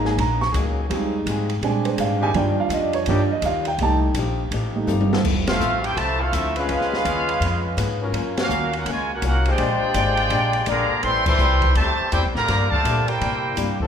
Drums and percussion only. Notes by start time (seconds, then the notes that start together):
0.05 snare
0.18 ride
0.42 snare
0.54 hi-hat pedal, ride
0.91 ride
1.27 hi-hat pedal, ride
1.50 ride
1.63 ride
1.85 ride
1.98 hi-hat pedal, ride
2.34 ride
2.70 hi-hat pedal, ride
2.93 ride
3.06 ride
3.42 hi-hat pedal, ride
3.65 ride
3.79 ride
4.15 hi-hat pedal, ride
4.52 ride
4.88 hi-hat pedal, high tom
5.01 high tom
5.13 snare
5.25 kick, crash
5.47 snare, ride
5.61 hi-hat pedal
5.84 ride
5.97 ride
6.33 hi-hat pedal, ride
6.56 ride
6.69 ride
6.81 snare
6.93 snare
7.05 hi-hat pedal, ride
7.29 ride
7.42 ride
7.78 hi-hat pedal, ride
8.14 ride
8.37 snare, ride
8.50 hi-hat pedal
8.73 ride
8.86 ride
9.22 hi-hat pedal, ride
9.45 ride
9.58 ride
9.94 hi-hat pedal, ride
10.17 ride
10.30 ride
10.53 ride
10.66 hi-hat pedal, ride
11.03 ride
11.26 kick, crash
11.39 hi-hat pedal
11.62 kick, ride
11.75 ride
12.12 hi-hat pedal, ride
12.35 snare
12.48 snare, ride
12.72 kick
12.85 hi-hat pedal, ride
13.08 ride
13.21 ride
13.57 hi-hat pedal, ride
13.80 kick